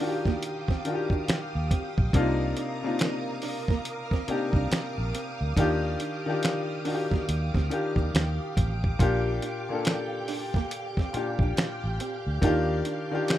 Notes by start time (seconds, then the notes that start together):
Already playing: G4 A#4 F5 D6 D#6
0.00 D#3 D4 F4 F#4
0.09 G4
0.25 A#3, kick, snare
0.43 closed hi-hat
0.68 C4, kick, snare
0.85 D#3 D4 F4 F#4, muted hollow-body jazz guitar stroke, closed hi-hat
0.95 G4
1.10 D4, kick
1.28 finger snap, muted fingered electric bass stroke, snare, closed hi-hat
1.55 D#2
1.71 C4, kick, closed hi-hat
1.98 A#1, kick
2.13 C2 C3 A#3 D4 D#4 F4 A#4, kick, closed hi-hat
2.57 D4, closed hi-hat
2.83 C3 A#3 D4 D#4 F4
2.99 finger snap, muted hollow-body jazz guitar stroke, snare, closed hi-hat
3.42 D4, open hi-hat
3.68 A#3, kick, snare
3.85 closed hi-hat
4.11 C4, kick, snare
4.27 C3 A#3 D4 D#4 G4, muted fingered electric bass stroke, muted hollow-body jazz guitar stroke, closed hi-hat
4.53 C2 D4, kick
4.71 finger snap, muted fingered electric bass stroke, snare, closed hi-hat
4.98 A#1
5.15 C4, closed hi-hat
5.41 D2
5.56 D#2 D#3 D4 D#4 F4 G4, kick, closed hi-hat
6.00 D4, closed hi-hat
6.26 D#3 D4 F4 G4
6.43 finger snap, muted hollow-body jazz guitar stroke, snare, closed hi-hat
6.85 D#3 D4 F4 F#4, open hi-hat
6.95 G4
7.11 A#3, kick, snare
7.29 D#2, closed hi-hat
7.54 D2 C4, kick, snare
7.70 D#3 D4 F4 G4, muted hollow-body jazz guitar stroke, closed hi-hat
7.96 D#2 D4, kick
8.14 D#2, finger snap, snare, closed hi-hat
8.57 A1 C4, kick, closed hi-hat
8.84 kick
8.99 A#1 A#2 A#3 D4 F4 G4 G5, kick, closed hi-hat
9.42 D4, closed hi-hat
9.69 A#2 A#3 D4 A4
9.85 finger snap, muted hollow-body jazz guitar stroke, snare, closed hi-hat
10.28 D4, open hi-hat
10.54 A#3, kick, snare
10.71 closed hi-hat
10.97 C4, kick, snare
11.13 A#2 A#3 D4 G4, muted fingered electric bass stroke, muted hollow-body jazz guitar stroke, closed hi-hat
11.39 A#1 D4, kick
11.57 finger snap, snare, closed hi-hat
11.84 A1
12.00 C4, closed hi-hat
12.27 D2
12.41 D#2 D#3 D4 D#4 F4 G4 F5, kick, closed hi-hat
12.85 D4, closed hi-hat
13.11 D#3 D4 F4 G4
13.28 finger snap, muted hollow-body jazz guitar stroke, snare, closed hi-hat